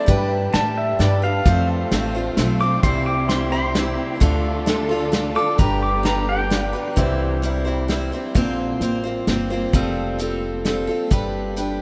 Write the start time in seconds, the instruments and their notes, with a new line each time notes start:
Already playing: pedal steel guitar D5
0.06 upright bass G2, steel-string acoustic guitar G3 D4 G4 B4, kick, closed hi-hat
0.53 upright bass A2, steel-string acoustic guitar G3 D4 G4 B4, pedal steel guitar A5, snare, closed hi-hat
0.78 pedal steel guitar E5
0.99 upright bass G2, steel-string acoustic guitar G3 D4 G4 B4, pedal steel guitar D5, snare, closed hi-hat
1.22 steel-string acoustic guitar D4 G4 B4, pedal steel guitar F5
1.45 upright bass F2, steel-string acoustic guitar F3 A3 C4 F4 C5, string section A3 C4 F4, kick, closed hi-hat
1.91 upright bass A1, steel-string acoustic guitar A3 C4 F4 C5, snare, closed hi-hat
2.15 steel-string acoustic guitar C4 F4 C5
2.37 upright bass B1, steel-string acoustic guitar A3 C4 F4 C5, snare, closed hi-hat
2.60 steel-string acoustic guitar C4 F4 C5, pedal steel guitar D6
2.83 upright bass C2, steel-string acoustic guitar C3 E3 G3 C4 E4 C5, string section C3 E4 G4, pedal steel guitar C6, kick, closed hi-hat
3.06 pedal steel guitar D6
3.29 steel-string acoustic guitar G3 C4 E4 C5, pedal steel guitar C6, snare, closed hi-hat
3.52 steel-string acoustic guitar G3 C4 E4 C5, pedal steel guitar C6
3.75 steel-string acoustic guitar G3 C4 E4 C5, snare, closed hi-hat
4.20 upright bass D2, steel-string acoustic guitar D3 A3 D4 F4 A4, string section D3 D4 F4 A4, kick, closed hi-hat
4.66 steel-string acoustic guitar A3 D4 F4 A4, snare, closed hi-hat
4.89 steel-string acoustic guitar D4 F4 A4
5.12 steel-string acoustic guitar A3 D4 F4 A4, snare, closed hi-hat
5.35 steel-string acoustic guitar D4 F4 A4, pedal steel guitar D6
5.58 upright bass G1, steel-string acoustic guitar G3 D4 G4 B4, string section B3 D4 G4, pedal steel guitar A#5, kick, closed hi-hat
5.83 pedal steel guitar D6
6.03 steel-string acoustic guitar G3 D4 G4 B4, pedal steel guitar A#5, snare, closed hi-hat
6.29 pedal steel guitar G5
6.50 steel-string acoustic guitar G3 D4 G4 B4, snare, closed hi-hat
6.73 steel-string acoustic guitar D4 G4 B4
6.96 upright bass C2, steel-string acoustic guitar C3 E3 G3 C4 E4 C5, kick, closed hi-hat
7.42 steel-string acoustic guitar G3 C4 E4 C5, closed hi-hat
7.65 steel-string acoustic guitar G3 C4 E4 C5
7.88 steel-string acoustic guitar G3 C4 E4 C5, snare, closed hi-hat
8.12 steel-string acoustic guitar G3 C4 E4 C5
8.35 upright bass A#1, steel-string acoustic guitar A#2 D3 A#3 C4 F4 C5, kick, closed hi-hat
8.81 upright bass A1, steel-string acoustic guitar A#3 C4 F4 C5, closed hi-hat
9.04 steel-string acoustic guitar A#3 C4 F4 C5
9.27 upright bass G1, steel-string acoustic guitar A#3 C4 F4 C5, snare, closed hi-hat
9.50 steel-string acoustic guitar A#3 C4 F4 C5
9.73 upright bass F1, steel-string acoustic guitar F3 G3 C4 F4 A4, kick, closed hi-hat
10.19 steel-string acoustic guitar G3 C4 F4 A4, closed hi-hat
10.65 steel-string acoustic guitar G3 C4 F4 A4, snare, closed hi-hat
10.87 steel-string acoustic guitar C4 F4 A4
11.11 upright bass G1, steel-string acoustic guitar G3 D4 G4 B4, kick, closed hi-hat
11.56 steel-string acoustic guitar G3 D4 G4 B4, closed hi-hat